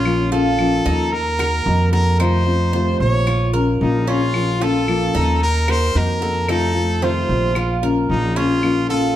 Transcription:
0.00 0.79 A#1 medium
0.00 0.31 C#4 medium
0.00 0.28 F4 medium
0.05 0.31 F3 medium
0.05 0.31 A#3 medium
0.05 0.31 C#4 medium
0.05 0.30 F4 medium
0.05 claves medium
0.31 0.58 A#3 soft
0.31 0.58 C#4 soft
0.31 0.58 F4 medium
0.31 0.84 F4 medium
0.31 1.14 A4 loud
0.58 1.11 F3 medium
0.58 1.12 A#3 medium
0.58 1.12 C#4 medium
0.58 1.12 F4 medium
0.58 claves medium
0.86 1.62 D#2 loud
0.86 1.38 D#4 medium
1.12 1.91 A#4 loud
1.12 muted nylon-string guitar stroke medium
1.39 1.65 A#3 soft
1.39 1.65 D#4 soft
1.39 1.65 F#4 medium
1.39 1.91 A#4 medium
1.39 claves medium
1.65 2.94 F2 loud
1.65 1.92 D#3 medium
1.65 1.92 A#3 medium
1.65 1.92 D#4 medium
1.65 1.91 F#4 medium
1.92 2.19 A#3 soft
1.92 2.19 D#4 soft
1.92 2.18 F#4 medium
1.92 2.19 A4 medium
1.92 2.17 A#4 loud
2.19 2.45 C3 medium
2.19 2.46 D#3 medium
2.19 2.46 A3 medium
2.19 2.46 C4 medium
2.19 2.72 D#4 medium
2.19 2.45 F4 medium
2.19 2.96 C5 loud
2.19 claves medium
2.46 2.72 A3 soft
2.46 2.73 C4 soft
2.46 2.72 F4 medium
2.72 3.26 C3 medium
2.72 3.26 D#3 medium
2.72 3.26 A3 medium
2.72 3.26 C4 medium
2.72 3.27 F4 medium
2.72 3.25 C5 medium
3.00 3.77 A#1 loud
3.00 3.50 C#5 loud
3.27 3.53 F4 medium
3.27 muted nylon-string guitar stroke medium
3.27 claves medium
3.53 3.80 A#3 soft
3.53 3.80 C#4 soft
3.53 3.79 F4 medium
3.53 4.06 A#4 medium
3.80 5.08 A#1 loud
3.80 4.06 F3 medium
3.80 4.07 A#3 medium
3.80 4.07 C#4 medium
3.80 4.10 D#4 medium
3.80 4.05 F4 medium
4.07 4.33 A#3 soft
4.07 4.60 C#4 medium
4.07 4.34 C#4 soft
4.07 4.33 F4 medium
4.07 4.64 F4 loud
4.33 4.60 F3 medium
4.33 4.60 A#3 medium
4.33 4.60 C#4 medium
4.33 4.58 F4 medium
4.33 claves medium
4.59 4.87 A#3 soft
4.59 4.87 C#4 soft
4.59 4.86 F4 soft
4.59 5.13 F4 medium
4.59 5.42 A4 loud
4.87 5.40 F3 medium
4.87 5.40 A#3 medium
4.87 5.41 C#4 medium
4.87 5.41 F4 medium
4.87 claves medium
5.15 5.91 D#2 medium
5.15 5.67 D#4 medium
5.41 5.71 A#4 loud
5.41 muted nylon-string guitar stroke medium
5.68 5.94 A#3 soft
5.68 5.94 D#4 medium
5.68 5.94 F#4 soft
5.68 6.20 A#4 medium
5.68 5.98 C5 loud
5.68 claves medium
5.94 7.22 F2 loud
5.94 6.20 D#3 medium
5.94 6.21 A#3 medium
5.94 6.21 D#4 medium
5.94 6.20 F#4 medium
5.94 6.50 A#4 loud
6.21 6.48 A#3 soft
6.21 6.48 D#4 soft
6.21 6.47 F#4 soft
6.21 6.48 A4 medium
6.47 6.74 C3 medium
6.47 6.74 D#3 medium
6.47 6.75 A3 medium
6.47 6.75 C4 medium
6.47 7.01 D#4 medium
6.47 6.73 F4 medium
6.47 7.05 A4 loud
6.47 claves medium
6.74 7.01 A3 soft
6.74 7.01 C4 soft
6.74 7.01 F4 medium
7.01 7.54 C3 medium
7.01 7.55 D#3 medium
7.01 7.55 A3 medium
7.01 7.55 C4 medium
7.01 7.83 F4 medium
7.01 7.55 F4 medium
7.01 7.54 C5 medium
7.29 8.05 A#1 medium
7.55 7.82 F4 medium
7.55 muted nylon-string guitar stroke medium
7.55 claves medium
7.82 8.08 A#3 soft
7.82 8.08 C#4 medium
7.82 8.08 F4 medium
7.82 8.35 A#4 medium
8.09 9.16 A#1 medium
8.09 8.35 F3 medium
8.09 8.35 A#3 medium
8.09 8.36 C#4 medium
8.09 8.38 D#4 medium
8.09 8.35 F4 medium
8.36 8.62 A#3 soft
8.36 8.88 C#4 medium
8.36 8.62 C#4 soft
8.36 8.62 F4 medium
8.36 8.89 F4 loud
8.62 8.88 F3 medium
8.62 8.89 A#3 medium
8.62 8.89 C#4 medium
8.62 8.87 F4 medium
8.62 claves medium
8.89 9.15 A#3 soft
8.89 9.16 C#4 soft
8.89 9.15 F4 medium
8.89 9.16 F4 medium
8.89 9.16 A4 loud

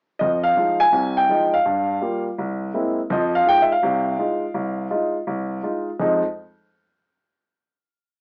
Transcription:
0.19 0.52 F2 medium
0.19 0.45 D#5 medium
0.44 0.81 F5 medium
0.57 0.82 F3 soft
0.57 0.82 G#3 soft
0.57 0.82 D#4 soft
0.80 1.18 G#5 loud
0.92 1.24 C2 medium
0.92 1.24 C3 medium
1.17 1.54 G5 medium
1.29 1.54 F3 soft
1.29 1.54 G#3 soft
1.29 1.54 D#4 medium
1.54 2.22 F5 medium
1.65 1.97 G2 medium
2.01 2.26 G3 soft
2.01 2.27 A#3 soft
2.01 2.27 F4 medium
2.38 2.70 C2 medium
2.74 2.99 G#3 medium
2.74 2.99 A#3 soft
2.74 2.99 C4 soft
2.74 2.99 E4 medium
3.10 3.42 F2 medium
3.10 3.42 F3 medium
3.10 3.33 D#5 medium
3.35 3.46 F5 medium
3.46 3.71 G#3 medium
3.46 3.72 D#4 medium
3.46 3.72 F4 medium
3.46 3.61 G5 loud
3.62 3.71 E5 medium
3.72 5.61 F5 medium
3.83 4.14 C2 medium
3.83 4.14 C3 medium
4.19 4.44 G#3 soft
4.19 4.44 D#4 soft
4.19 4.44 F4 medium
4.54 4.86 C2 medium
4.90 5.16 G#3 soft
4.90 5.16 D#4 soft
4.90 5.16 F4 medium
5.27 5.59 C2 medium
5.63 5.88 G#3 soft
5.63 5.89 D#4 soft
5.63 5.89 F4 medium
5.99 6.21 F2 medium
5.99 6.21 F3 medium
5.99 6.22 G#3 medium
5.99 6.22 D#4 medium

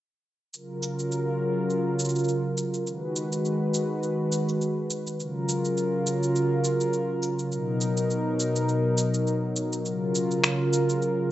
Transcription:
0.53 2.84 C#3 medium
0.53 2.84 F#3 medium
0.53 2.84 F4 medium
0.53 2.84 A#4 medium
0.53 shaker soft
0.83 shaker medium
0.99 shaker soft
1.12 shaker soft
1.70 shaker soft
1.99 shaker medium
2.05 shaker soft
2.09 shaker soft
2.16 shaker soft
2.19 shaker soft
2.24 shaker soft
2.28 shaker soft
2.57 shaker medium
2.74 shaker soft
2.86 5.16 D#3 medium
2.86 5.17 G#3 medium
2.86 5.16 F#4 medium
2.86 5.17 B4 medium
2.86 shaker soft
3.16 shaker medium
3.32 shaker soft
3.45 shaker soft
3.74 shaker medium
4.03 shaker soft
4.32 shaker medium
4.49 shaker soft
4.61 shaker soft
4.90 shaker medium
5.07 shaker soft
5.19 7.49 C#3 medium
5.19 7.50 F#3 medium
5.19 7.49 F4 medium
5.19 7.50 A#4 medium
5.19 shaker soft
5.49 shaker medium
5.65 shaker soft
5.77 shaker soft
6.07 shaker medium
6.23 shaker soft
6.36 shaker soft
6.64 shaker medium
6.81 shaker soft
6.93 shaker soft
7.22 shaker medium
7.39 shaker soft
7.52 9.83 B2 medium
7.52 11.32 F#3 medium
7.52 9.83 D#4 medium
7.52 9.82 A#4 medium
7.52 shaker soft
7.81 shaker medium
7.97 shaker soft
8.10 shaker soft
8.40 shaker medium
8.56 shaker soft
8.69 shaker soft
8.98 shaker medium
9.14 shaker soft
9.27 shaker soft
9.56 shaker medium
9.73 shaker soft
9.85 11.32 C#3 medium
9.85 11.32 F4 medium
9.85 11.32 A#4 medium
9.85 shaker soft
10.15 shaker medium
10.31 shaker soft
10.44 finger snap medium
10.44 shaker soft
10.73 shaker medium
10.89 shaker soft
11.02 shaker soft

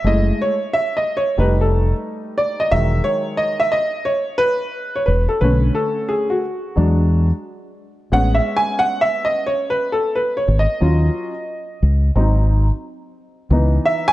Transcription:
0.04 0.31 F#1 loud
0.04 0.53 G#3 medium
0.04 0.53 A3 medium
0.04 0.53 E4 medium
0.04 0.40 D#5 medium
0.42 0.74 C#5 medium
0.73 0.95 E5 loud
0.97 1.18 D#5 medium
1.17 1.39 C#5 medium
1.38 1.92 F1 medium
1.38 2.69 G3 medium
1.38 2.69 A3 soft
1.38 2.69 D#4 medium
1.38 1.60 B4 medium
1.61 1.92 A4 medium
2.38 2.61 D5 medium
2.60 2.73 D#5 loud
2.71 2.99 E1 loud
2.71 3.70 D#3 medium
2.71 3.69 F#3 medium
2.71 3.70 G#3 soft
2.71 3.04 E5 loud
3.04 3.40 C#5 loud
3.37 3.62 D#5 loud
3.60 3.73 E5 loud
3.72 4.08 D#5 loud
4.05 4.41 C#5 loud
4.38 4.97 B4 loud
4.96 5.08 C#5 medium
5.06 5.26 E1 medium
5.06 5.28 B4 medium
5.29 5.42 A4 medium
5.41 5.69 B1 loud
5.41 6.40 D3 medium
5.41 6.40 A3 soft
5.41 6.40 C#4 medium
5.41 5.77 B4 medium
5.75 6.10 A4 medium
6.09 6.32 G#4 medium
6.30 7.28 F#4 medium
6.76 7.31 E2 medium
6.76 7.25 F#3 medium
6.76 7.26 G#3 soft
6.76 7.26 D4 medium
8.12 8.39 A1 medium
8.12 10.78 G#3 medium
8.12 10.78 B3 soft
8.12 10.78 C#4 medium
8.12 8.34 F#5 loud
8.35 8.58 E5 medium
8.57 8.80 G#5 loud
8.79 9.03 F#5 loud
9.01 9.25 E5 loud
9.25 9.48 D#5 loud
9.46 9.70 C#5 medium
9.70 9.93 B4 medium
9.92 10.15 A4 medium
10.15 10.38 B4 medium
10.37 10.60 C#5 medium
10.48 10.66 G#1 medium
10.59 12.24 D#5 medium
10.80 11.09 D#2 loud
10.80 11.30 F#3 medium
10.80 11.31 C#4 soft
10.80 11.31 F4 medium
11.82 12.10 C#2 medium
12.15 12.70 G#1 loud
12.15 12.65 F#3 medium
12.15 12.65 C4 soft
12.15 12.66 D#4 medium
13.50 13.78 C#2 loud
13.50 14.13 E3 medium
13.50 14.13 B3 medium
13.50 14.13 D#4 medium
13.85 14.08 E5 loud
14.08 14.13 G#5 loud

